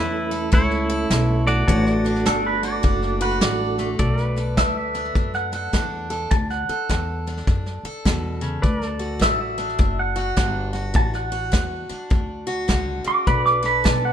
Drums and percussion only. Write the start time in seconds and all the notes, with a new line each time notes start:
0.31 snare
0.52 kick, snare
0.71 snare
0.89 snare
1.11 snare, hi-hat pedal
1.47 snare
1.68 kick, snare
1.86 snare
2.04 snare
2.15 snare
2.26 snare, hi-hat pedal
2.63 snare
2.84 kick, snare
3.02 snare
3.20 snare
3.31 snare
3.41 snare, hi-hat pedal
3.78 snare
3.99 kick, snare
4.18 snare
4.36 snare
4.57 kick, snare, hi-hat pedal
4.94 snare
5.05 snare
5.15 kick, snare
5.34 snare
5.52 snare
5.73 kick, snare, hi-hat pedal
6.11 snare
6.31 kick, snare
6.50 snare
6.69 snare
6.90 kick, snare, hi-hat pedal
7.26 snare
7.37 snare
7.47 kick, snare
7.66 snare
7.85 snare
8.05 kick, snare, hi-hat pedal
8.42 snare
8.63 kick, snare
8.82 snare
9.00 snare
9.21 kick, snare, hi-hat pedal
9.58 snare
9.69 snare
9.79 kick, snare
10.16 snare
10.37 kick, snare, hi-hat pedal
10.74 snare
10.95 kick, snare
11.13 snare
11.32 snare
11.53 kick, snare, hi-hat pedal
11.90 snare
12.11 kick, snare
12.48 snare
12.69 kick, snare, hi-hat pedal
13.05 snare
13.27 kick, snare
13.46 snare
13.64 snare
13.85 kick, snare, hi-hat pedal